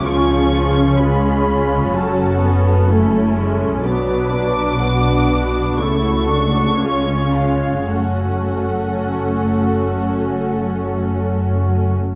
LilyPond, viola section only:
\new Staff \with { instrumentName = "Viola section" } { \time 4/4 \key fis \minor \tempo 4 = 60 << { cis'2. cis'4 | b8 d'8 d'4 e'8 d'8 cis'4 | cis'1 | } \\ { eis8 eis8 gis8 gis8 fis8 b8 a8 gis8 | fis4 b4 a4 gis8 gis8 | a1 | } >> }